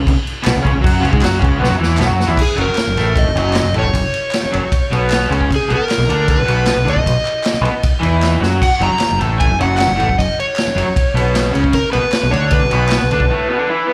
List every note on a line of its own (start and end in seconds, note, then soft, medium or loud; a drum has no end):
0.07 0.16 C#2 medium
0.07 0.13 C#3 medium
0.07 kick loud
0.07 crash medium
0.14 muted overdriven electric guitar stroke medium
0.14 muted fingered electric bass stroke soft
0.27 crash medium
0.43 0.55 B1 loud
0.43 0.53 B2 medium
0.43 0.53 B3 loud
0.43 clap loud
0.43 crash medium
0.47 snare loud
0.53 0.64 C#2 medium
0.53 0.60 C#3 medium
0.61 0.73 C#2 medium
0.61 0.71 C#3 medium
0.61 0.73 C#4 loud
0.61 kick medium
0.66 crash medium
0.72 0.84 C#2 medium
0.72 0.81 C#3 medium
0.81 1.02 F#2 loud
0.81 1.00 F#3 loud
0.81 1.01 F#4 loud
0.81 kick loud
0.86 crash medium
1.01 1.12 C#2 loud
1.01 1.11 C#3 medium
1.01 1.12 C#4 loud
1.01 crash medium
1.10 1.22 G#2 medium
1.10 1.20 G#3 medium
1.10 1.21 G#4 loud
1.10 kick loud
1.21 1.41 F#2 medium
1.21 1.38 F#3 medium
1.21 1.40 F#4 medium
1.21 snare loud
1.21 clap medium
1.21 crash medium
1.34 snare soft
1.38 1.60 C#2 loud
1.38 1.58 C#3 loud
1.38 1.59 C#4 loud
1.38 kick loud
1.44 crash medium
1.59 1.69 B1 medium
1.59 1.67 B2 medium
1.59 1.68 B3 loud
1.64 snare medium
1.68 1.79 F#2 medium
1.68 1.77 F#3 loud
1.68 1.78 F#4 loud
1.77 1.99 E2 loud
1.77 1.98 E3 medium
1.77 1.98 E4 loud
1.83 snare medium
1.97 2.08 B1 loud
1.97 2.05 B2 loud
1.97 2.07 B3 loud
1.97 snare medium
1.97 clap loud
2.05 2.27 F#2 medium
2.05 2.26 F#3 medium
2.05 2.27 F#4 medium
2.20 snare medium
2.27 2.38 E2 medium
2.27 2.37 E3 medium
2.27 2.38 E4 loud
2.37 kick loud
2.37 crash loud
2.42 2.60 G#4 medium
2.56 2.67 F#1 loud
2.56 2.66 F#2 loud
2.56 2.67 F#3 loud
2.56 ride medium
2.61 3.20 A#4 medium
2.69 muted overdriven electric guitar stroke medium
2.69 muted fingered electric bass stroke soft
2.75 snare loud
2.75 clap medium
2.75 ride medium
2.87 2.95 F#1 medium
2.87 2.98 F#2 medium
2.96 3.23 A1 medium
2.96 3.25 A2 medium
2.96 3.26 A3 loud
2.96 snare soft
2.96 ride medium
3.16 3.77 D#5 loud
3.16 kick loud
3.16 ride loud
3.25 3.34 F#1 medium
3.25 3.35 F#2 medium
3.35 3.63 F#1 loud
3.35 3.63 F#2 medium
3.35 3.65 F#3 medium
3.35 ride medium
3.53 snare loud
3.53 clap medium
3.53 ride loud
3.64 3.72 F#1 medium
3.64 3.74 F#2 medium
3.73 3.82 A1 medium
3.73 3.84 A2 medium
3.73 3.84 A3 medium
3.73 ride medium
3.79 5.28 C#5 medium
3.83 3.93 F#1 medium
3.83 3.92 F#2 medium
3.83 kick medium
3.93 4.03 F#1 medium
3.93 4.03 F#2 medium
3.93 kick loud
3.93 ride loud
4.14 ride medium
4.31 snare loud
4.31 clap medium
4.31 ride medium
4.43 muted overdriven electric guitar stroke medium
4.43 muted fingered electric bass stroke soft
4.51 4.63 F#1 loud
4.51 4.61 F#2 medium
4.51 4.62 F#3 loud
4.51 ride medium
4.63 muted overdriven electric guitar stroke medium
4.72 kick loud
4.72 ride loud
4.91 5.28 B1 medium
4.91 5.29 B2 medium
4.91 5.30 B3 medium
4.91 ride medium
5.10 snare loud
5.10 clap medium
5.10 ride loud
5.29 5.48 C#2 medium
5.29 5.49 C#3 medium
5.29 5.49 C#4 loud
5.29 ride medium
5.41 kick medium
5.51 kick loud
5.51 ride medium
5.56 5.73 G#4 medium
5.68 5.78 B1 medium
5.68 5.78 B2 medium
5.68 5.79 B3 medium
5.68 ride medium
5.75 6.30 A#4 loud
5.75 muted fingered electric bass stroke soft
5.75 muted overdriven electric guitar stroke medium
5.89 snare loud
5.89 clap medium
5.89 ride medium
5.98 6.07 B1 medium
5.98 6.08 B2 medium
5.98 snare soft
6.08 6.35 D2 loud
6.08 6.36 D3 medium
6.08 6.38 D4 loud
6.08 ride medium
6.28 6.90 B4 medium
6.28 kick loud
6.28 ride medium
6.37 6.48 B1 medium
6.37 6.44 B2 medium
6.45 6.75 B1 medium
6.45 6.74 B2 medium
6.45 6.75 B3 loud
6.45 ride medium
6.66 snare loud
6.66 clap medium
6.66 ride medium
6.75 6.85 B1 medium
6.75 6.84 B2 medium
6.85 6.95 D2 loud
6.85 6.95 D3 medium
6.85 6.95 D4 medium
6.85 ride medium
6.90 8.40 D#5 medium
6.95 7.05 B1 medium
6.95 7.02 B2 medium
6.95 kick medium
7.04 7.15 B1 medium
7.04 7.14 B2 medium
7.04 kick loud
7.04 ride loud
7.25 clap medium
7.25 ride medium
7.44 snare loud
7.44 clap medium
7.44 ride medium
7.53 muted overdriven electric guitar stroke medium
7.53 muted fingered electric bass stroke soft
7.61 7.72 B1 loud
7.61 7.70 B2 medium
7.61 7.72 B3 loud
7.61 ride medium
7.71 muted overdriven electric guitar stroke medium
7.71 muted fingered electric bass stroke soft
7.83 kick loud
7.83 ride loud
8.00 8.39 E2 medium
8.00 8.40 E3 medium
8.00 8.41 E4 loud
8.00 ride medium
8.22 snare medium
8.22 clap medium
8.40 8.60 F#2 medium
8.40 8.60 F#3 medium
8.40 8.61 F#4 medium
8.40 snare medium
8.62 8.83 F#5 loud
8.62 kick loud
8.62 splash medium
8.62 crash medium
8.80 8.90 F#1 loud
8.80 8.88 F#2 medium
8.80 8.91 F#3 loud
8.80 9.18 A#5 loud
8.80 ride medium
8.89 muted overdriven electric guitar stroke medium
8.89 muted fingered electric bass stroke soft
8.99 snare loud
8.99 clap medium
8.99 ride medium
9.10 9.20 F#1 medium
9.10 9.20 F#2 medium
9.19 9.48 A1 loud
9.19 9.48 A2 medium
9.19 9.49 A3 loud
9.19 ride medium
9.40 9.58 G#5 loud
9.40 kick loud
9.40 ride loud
9.47 9.59 F#1 medium
9.47 9.58 F#2 medium
9.59 9.87 F#1 loud
9.59 9.86 F#2 medium
9.59 9.88 F#3 loud
9.59 9.77 F#5 loud
9.59 ride medium
9.77 10.15 F#5 medium
9.77 snare loud
9.77 clap medium
9.77 ride loud
9.87 9.99 F#1 medium
9.87 9.98 F#2 medium
9.96 10.06 A2 medium
9.96 10.07 A3 medium
10.00 10.08 A1 medium
10.00 ride medium
10.08 10.18 F#1 medium
10.08 10.17 F#2 medium
10.08 kick medium
10.18 10.27 F#1 medium
10.18 10.28 F#2 medium
10.18 10.36 D#5 medium
10.18 kick loud
10.18 ride medium
10.40 11.52 C#5 medium
10.40 ride medium
10.56 snare loud
10.56 clap medium
10.56 ride medium
10.67 muted fingered electric bass stroke soft
10.67 muted overdriven electric guitar stroke medium
10.75 10.85 F#1 medium
10.75 10.84 F#2 medium
10.75 10.86 F#3 loud
10.75 ride medium
10.86 muted overdriven electric guitar stroke medium
10.96 kick loud
10.96 ride loud
11.14 11.51 B1 medium
11.14 11.51 B2 medium
11.14 11.52 B3 loud
11.14 ride medium
11.35 snare loud
11.35 clap medium
11.35 ride loud
11.52 11.73 C#2 medium
11.52 11.72 C#3 medium
11.52 11.73 C#4 loud
11.52 ride medium
11.64 kick medium
11.73 11.92 A#4 medium
11.73 kick medium
11.73 ride loud
11.92 12.03 B1 medium
11.92 12.02 B2 medium
11.92 12.02 B3 medium
11.92 12.29 B4 medium
11.92 ride medium
12.03 muted overdriven electric guitar stroke medium
12.03 muted fingered electric bass stroke soft
12.12 snare loud
12.12 clap medium
12.12 ride medium
12.23 12.32 B1 medium
12.23 12.30 B2 medium
12.30 12.60 D2 loud
12.30 12.60 D3 medium
12.30 12.61 D4 loud
12.30 12.50 C#5 medium
12.30 ride medium
12.51 13.93 B4 medium
12.51 kick loud
12.51 ride loud
12.61 12.72 B1 medium
12.61 12.69 B2 medium
12.70 12.99 B1 loud
12.70 12.99 B2 medium
12.70 13.00 B3 loud
12.70 ride medium
12.89 snare loud
12.89 clap medium
12.89 ride medium
13.01 13.11 B1 medium
13.01 13.10 B2 medium
13.10 13.19 D2 medium
13.10 13.19 D3 medium
13.10 13.20 D4 loud
13.10 ride medium
13.19 13.29 B1 medium
13.19 13.29 B2 medium
13.19 kick medium
13.30 13.48 A2 loud
13.30 13.49 A3 loud
13.49 13.57 B2 medium
13.49 13.58 B3 loud
13.58 13.67 D3 loud
13.58 13.68 D4 medium
13.68 13.87 E3 medium
13.68 13.88 E4 loud
13.87 13.93 B3 loud
13.87 13.93 B4 loud